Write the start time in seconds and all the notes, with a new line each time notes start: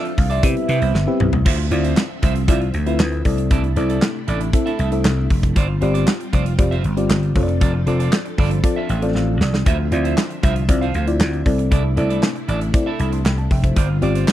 Already playing: F3 C4 D4 F4 A4 E5
0.05 muted clean electric guitar stroke, closed hi-hat
0.17 C2 F5, muted clean electric guitar stroke, kick, open hi-hat
0.30 F4 A4 D5 E5, closed hi-hat
0.43 C3 G3 B3 C4 E4 G4 B4 E5, muted clean electric guitar stroke, kick, closed hi-hat
0.56 muted clean electric guitar stroke, closed hi-hat
0.68 C3 E4 G4 B4, closed hi-hat
0.81 C2 E4 G4 C5, closed hi-hat
0.94 G1, muted clean electric guitar stroke, snare
1.07 C4 E4 G4 B4 E5, muted clean electric guitar stroke
1.20 B1, mid tom
1.33 C2, muted clean electric guitar stroke, floor tom
1.45 D2 D3 F3 C4 F4 C5 E5, kick, crash
1.58 muted clean electric guitar stroke
1.71 D2 C4 E4 F4 C5 D5 E5, closed hi-hat
1.84 F4 C5 E5, closed hi-hat
1.97 muted clean electric guitar stroke, snare, clap
2.09 muted clean electric guitar stroke
2.22 C2 F4 C5 E5, kick, closed hi-hat
2.35 muted clean electric guitar stroke, closed hi-hat
2.48 C2 C4 E4 F4 C5 D5 E5, kick, closed hi-hat
2.61 muted clean electric guitar stroke, closed hi-hat
2.74 D2, muted clean electric guitar stroke, closed hi-hat
2.86 C4 E4 F4 B4 C5 E5, closed hi-hat
2.99 D2, muted clean electric guitar stroke, snare, clap
3.12 muted clean electric guitar stroke, closed hi-hat
3.25 C2 C3 A3 C4 D4 E4 A4 D5, kick, open hi-hat
3.38 muted clean electric guitar stroke, closed hi-hat
3.51 C2 E4 A4 D5, kick, closed hi-hat
3.64 muted clean electric guitar stroke, closed hi-hat
3.76 C2 C4 E4 A4 D5, closed hi-hat
3.89 E4 A4 D5, closed hi-hat
4.02 snare, clap
4.15 muted clean electric guitar stroke
4.27 A1 E4 A4 D5, closed hi-hat
4.40 muted clean electric guitar stroke, closed hi-hat
4.53 C4 E4 A4 E5, muted clean electric guitar stroke, kick, closed hi-hat
4.66 E4 A4 E5, closed hi-hat
4.79 C2 E4 A4 E5, closed hi-hat
4.92 C4 E4 A4 E5, muted clean electric guitar stroke, closed hi-hat
5.05 C2, muted clean electric guitar stroke, snare, clap
5.17 muted clean electric guitar stroke
5.30 F1, kick, open hi-hat
5.43 muted clean electric guitar stroke, kick, closed hi-hat
5.56 G1 G3 C4 F4 C5 D5, kick, closed hi-hat
5.68 muted clean electric guitar stroke
5.81 G1 C4 F4 G4 C5 D5, closed hi-hat
5.94 F4 C5 D5, closed hi-hat
6.07 muted clean electric guitar stroke, snare, clap
6.20 muted clean electric guitar stroke, closed hi-hat
6.33 F1 F4 C5 D5, kick, closed hi-hat
6.46 muted clean electric guitar stroke, closed hi-hat
6.58 F1 C4 F4 G4 D5, muted clean electric guitar stroke, kick, closed hi-hat
6.71 F4 C5 E5, closed hi-hat
6.84 G1, muted clean electric guitar stroke, closed hi-hat
6.97 C4 F4 G4 D5, muted clean electric guitar stroke, closed hi-hat
7.10 G1, muted clean electric guitar stroke, snare, clap
7.23 muted clean electric guitar stroke, closed hi-hat
7.35 F1 F3 C4 D4 F4 A4 C#5, kick, open hi-hat
7.43 D5
7.48 muted clean electric guitar stroke, closed hi-hat
7.61 F1 F4 A4 D5, kick, closed hi-hat
7.74 muted clean electric guitar stroke
7.86 F1 C4 F4 A4 D5, closed hi-hat
7.99 F4 A4 D5, closed hi-hat
8.12 muted clean electric guitar stroke, snare, clap
8.25 muted clean electric guitar stroke, closed hi-hat
8.38 G1 F4 A4 D5 B5, kick, open hi-hat
8.51 muted clean electric guitar stroke, closed hi-hat
8.64 C4 F4 A4 D5 A5, muted clean electric guitar stroke, kick, closed hi-hat
8.76 F4 A4 E5
8.89 A1 F4 A4 E5 G5, closed hi-hat
9.02 C4 F4 A4 D5, muted clean electric guitar stroke, closed hi-hat
9.15 A1 F5, muted clean electric guitar stroke, snare
9.28 muted clean electric guitar stroke
9.41 C2 D5, snare
9.53 muted clean electric guitar stroke, snare
9.66 D2 D3 F3 F4 C5 E5, kick, closed hi-hat
9.79 muted clean electric guitar stroke
9.92 D2 C4 E4 F4 C5 D5 E5, closed hi-hat
10.04 F4 C5 E5, closed hi-hat
10.17 snare, clap
10.30 muted clean electric guitar stroke, closed hi-hat
10.43 C2 F4 C5 E5, kick, closed hi-hat
10.56 muted clean electric guitar stroke, closed hi-hat
10.69 C2 C4 E4 F4 D5, muted clean electric guitar stroke, kick, closed hi-hat
10.81 F4 C5 F5, closed hi-hat
10.94 D2 F4 C5 F5, closed hi-hat
11.07 C4 E4 F4 D5, muted clean electric guitar stroke, closed hi-hat
11.20 D2, muted clean electric guitar stroke, snare, clap
11.33 muted clean electric guitar stroke, closed hi-hat
11.46 C2 C3 A3 C4 D4 E4 A4 D5, kick, open hi-hat
11.58 muted clean electric guitar stroke, closed hi-hat
11.71 C2 E4 A4 D5, kick, closed hi-hat
11.84 muted clean electric guitar stroke
11.96 C2 C4 E4 A4 D5, closed hi-hat
12.09 E4 A4 D5, closed hi-hat
12.23 muted clean electric guitar stroke, snare, clap
12.36 muted clean electric guitar stroke, closed hi-hat
12.48 A1 E4 A4 D5, closed hi-hat
12.61 muted clean electric guitar stroke, closed hi-hat
12.74 C4 E4 A4 D5, muted clean electric guitar stroke, kick, closed hi-hat
12.86 E4 A4 E5
12.99 C2 E4 A4 E5 B5 D6, closed hi-hat
13.12 A5 C6, muted clean electric guitar stroke, closed hi-hat
13.25 C2 G5 B5, muted clean electric guitar stroke, snare, clap
13.38 A5, muted clean electric guitar stroke, closed hi-hat
13.51 F1 E5 G5, kick, open hi-hat
13.64 C5 E5, muted clean electric guitar stroke, kick, closed hi-hat
13.76 G1 G3 C4 F4 C5 D5, kick, closed hi-hat
13.89 muted clean electric guitar stroke
14.02 G1 C4 F4 G4 C5 D5, closed hi-hat
14.14 F4 C5 D5, closed hi-hat
14.28 muted clean electric guitar stroke, snare, clap